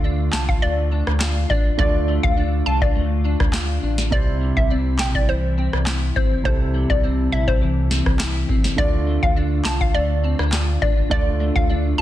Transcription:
Already playing: sub bass D2, grand piano D3 A3 F4 D5, clean electric guitar D3 A3
0.04 clean electric guitar D4
0.33 sub bass C2, clean electric guitar F4, synth pluck A5, snare, clap
0.49 synth pluck F5, kick
0.62 sub bass D2, clean electric guitar A3, synth pluck D5
0.92 clean electric guitar D4
1.07 sub bass D2, cross-stick
1.21 clean electric guitar F4, snare, clap
1.50 sub bass A1, clean electric guitar D4, synth pluck D5, kick
1.77 sub bass D2, grand piano D3 A3 F4 D5, clean electric guitar D3, synth pluck D5, kick
2.08 clean electric guitar A3
2.23 sub bass D2, synth pluck F5, kick
2.37 clean electric guitar D4
2.66 sub bass C2, clean electric guitar F4, synth pluck A5
2.82 synth pluck D5, kick
2.95 sub bass D2, clean electric guitar A3
3.25 clean electric guitar D4
3.40 sub bass D2, kick, cross-stick
3.54 clean electric guitar F4, snare, clap
3.83 sub bass A1, clean electric guitar D4
3.98 snare
4.11 sub bass C2, grand piano C3 G3 E4 C5, clean electric guitar C3, synth pluck D5, kick
4.41 clean electric guitar G3
4.57 sub bass C2, synth pluck E5, kick
4.70 clean electric guitar C4
4.99 sub bass A#1, clean electric guitar E4, synth pluck G5, snare, clap
5.15 synth pluck D5, kick
5.28 sub bass C2, clean electric guitar E3, synth pluck C5
5.58 clean electric guitar C4
5.73 sub bass C2, cross-stick
5.87 clean electric guitar E4, snare, clap
6.16 sub bass G1, clean electric guitar C4, synth pluck C5, kick
6.44 sub bass C2, grand piano C3 G3 E4 A4, clean electric guitar C3, synth pluck C5, kick
6.74 clean electric guitar G3
6.90 sub bass C2, synth pluck D5, kick
7.03 clean electric guitar C4
7.32 sub bass A#1, clean electric guitar E4, synth pluck E5
7.48 synth pluck C5, kick
7.62 sub bass C2, clean electric guitar E3
7.91 clean electric guitar C4, snare
8.06 sub bass C2, kick, cross-stick
8.20 clean electric guitar E4, snare, clap
8.49 sub bass G1, clean electric guitar C4, kick
8.64 snare
8.76 sub bass D2, grand piano D3 A3 F4 D5, clean electric guitar D3, synth pluck D5, kick
9.07 clean electric guitar A3
9.23 sub bass D2, synth pluck F5, kick
9.36 clean electric guitar D4
9.65 sub bass C2, clean electric guitar F4, synth pluck A5, snare, clap
9.81 synth pluck F5, kick
9.94 sub bass D2, clean electric guitar A3, synth pluck D5
10.24 clean electric guitar C4
10.39 sub bass D2, clean electric guitar D4, cross-stick
10.53 clean electric guitar F4, snare, clap
10.82 sub bass A1, clean electric guitar D4, synth pluck D5, kick
11.09 sub bass D2, grand piano D3 A3 F4 D5, clean electric guitar D3, synth pluck D5, kick
11.40 clean electric guitar A3
11.56 sub bass D2, synth pluck F5, kick
11.69 clean electric guitar D4
11.98 sub bass C2, clean electric guitar F4, synth pluck A5

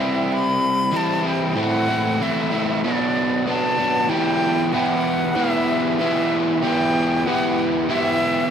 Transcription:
Already playing: overdriven electric guitar E3 G3 C4 E4
0.00 flute E5
0.33 flute B5
0.92 overdriven electric guitar E3 G3 C4 E4
0.97 flute A5
1.23 overdriven electric guitar G3 C4 E4
1.28 flute G5
1.56 overdriven electric guitar A2 E3 A3 C4 E4
1.60 flute F#5
1.88 overdriven electric guitar A3 C4 E4
2.20 overdriven electric guitar E3 A3 C4 E4, flute E5
2.51 overdriven electric guitar A3 C4 E4
2.84 overdriven electric guitar B2 F#3 B3 D4, flute D5
3.46 overdriven electric guitar B2 F#3 B3 D4, flute A5
3.77 overdriven electric guitar F#3 B3 D4
4.09 overdriven electric guitar E3 B3 E4 G4, flute G5
4.73 overdriven electric guitar E3 B3 E4 G4, flute F#5
5.35 overdriven electric guitar E3 B3 E4 G4, flute E5
5.97 overdriven electric guitar E3 B3 E4, flute E5
6.02 overdriven electric guitar G4
6.61 overdriven electric guitar E3 B3 E4 G4, flute G5
7.26 overdriven electric guitar E3 B3 E4 G4, flute F#5
7.89 overdriven electric guitar E3 B3 E4 G4, flute E5

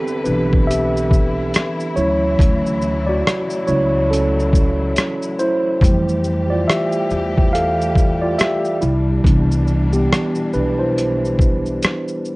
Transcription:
Already playing: string section D3 E3 G3 E4 B4, tine electric piano B3 C4 G4 A4
0.07 shaker
0.24 upright bass B1, tine electric piano E3 B3 D4 B4, shaker
0.53 kick
0.67 tine electric piano G4 E5, closed hi-hat, shaker
0.97 shaker
1.10 kick, shaker
1.54 cross-stick, closed hi-hat, shaker
1.80 shaker
1.96 upright bass D2, string section C#3 F#3 A3, tine electric piano F#3 C#4 E4 C#5, shaker
2.39 upright bass D2, kick, closed hi-hat, shaker
2.66 shaker
2.82 shaker
3.07 tine electric piano F#4 D5
3.27 cross-stick, closed hi-hat, shaker
3.50 shaker
3.67 upright bass C#2, tine electric piano F#3 C#4 E4 C#5, shaker
4.11 tine electric piano C#4 A4, closed hi-hat, shaker
4.39 shaker
4.53 kick, shaker
4.96 cross-stick, closed hi-hat, shaker
5.22 shaker
5.39 tine electric piano E4 C5, shaker
5.81 upright bass F2, string section E3 G3 A3 G4, tine electric piano E3 G3 A3, kick, closed hi-hat, shaker
6.09 shaker
6.24 shaker
6.50 tine electric piano F4 D5
6.68 tine electric piano G4 E5, cross-stick, closed hi-hat, shaker
6.92 shaker
7.10 upright bass E2, shaker
7.38 kick
7.53 tine electric piano A4 F5, closed hi-hat, shaker
7.82 shaker
7.96 kick, shaker
8.22 tine electric piano F4 D5
8.38 tine electric piano G4 E5, cross-stick, closed hi-hat, shaker
8.65 shaker
8.81 upright bass C2, string section B2 E3 D4, tine electric piano G3 E4, shaker
9.24 upright bass C2, tine electric piano E3 B3 D4, kick, closed hi-hat, shaker
9.52 shaker
9.67 shaker
9.93 tine electric piano B3 G4, shaker
10.13 cross-stick, closed hi-hat, shaker
10.35 shaker
10.53 upright bass B1, tine electric piano D4 B4, shaker
10.79 tine electric piano E4 C5
10.98 closed hi-hat, shaker
11.25 shaker
11.39 kick, shaker
11.66 shaker
11.83 cross-stick, closed hi-hat, shaker
12.08 shaker
12.25 shaker

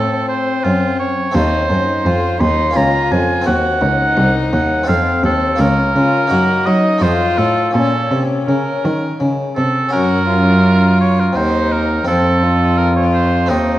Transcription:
Already playing: cello A2, harpsichord A2 A3 C4 F4, violin C4, oboe A4
0.28 oboe C5
0.64 cello F#2, harpsichord F#2, oboe F4
0.99 oboe C#5
1.31 cello D#2, harpsichord D#2 A3 C4 F4, oboe C5
1.35 violin D#4
1.69 cello F#2, harpsichord F#2, violin D#4
2.05 cello F2, harpsichord F2, violin F4
2.40 cello D#2, harpsichord D#2, violin D#4, oboe C6
2.71 harpsichord A#3 C#4 F4
2.75 harpsichord C#2, cello C#2, violin F4, oboe A#5
3.11 cello F2, harpsichord F2, oboe G#5
3.42 harpsichord C4 A#4
3.46 harpsichord D#2, cello D#2, violin F#4, oboe F#5
3.81 harpsichord C#2, cello C#2, violin D#4
4.17 cello C2, harpsichord C2
4.53 cello D#2, harpsichord D#2, oboe F#5
4.83 harpsichord F2 C4 F4 A4
4.88 cello F2, violin C4, oboe F5
5.23 cello D#2, harpsichord D#2, oboe A4
5.56 cello C#2, harpsichord A#3 F4 A#4, violin C#4
5.60 harpsichord C#2, oboe A#4
5.95 cello C#3, harpsichord C#3, violin F4
6.27 cello F#2, harpsichord A#3 D#4 A#4
6.31 harpsichord F#2, violin F#4
6.66 cello F#3, harpsichord F#3, violin D#4, oboe D#5
6.98 cello F2, harpsichord A3 D#4 F4
7.03 harpsichord F2, violin F4, oboe C5
7.38 cello A2, harpsichord A2, oboe A4
7.71 cello A#2, harpsichord A#3 C#4 F4, oboe A4
7.75 harpsichord A#2, violin C#4
8.11 cello C3, harpsichord C3
8.47 cello C#3, harpsichord C#3, oboe A#4
8.84 cello D#3, harpsichord D#3
9.20 harpsichord C#3, cello C#3
9.56 harpsichord C3, cello C3, oboe A4
9.89 harpsichord C#4 F#4, oboe A#4
9.93 cello F#2, harpsichord F#2, violin F#4
10.28 violin F4
11.01 oboe C#5
11.20 oboe A#4
11.32 harpsichord C4 D#4 F#4, oboe C5
11.37 harpsichord D#2, cello D#2, violin D#4
11.72 oboe A#4
12.04 cello F2, harpsichord C4 F4, oboe A4
12.09 harpsichord F2, violin C4
12.44 violin F4
12.77 oboe A#4
12.96 oboe C#5
13.14 oboe C5
13.46 harpsichord A3 C4 F4, oboe D#4
13.50 cello D#2, harpsichord D#2, violin C4

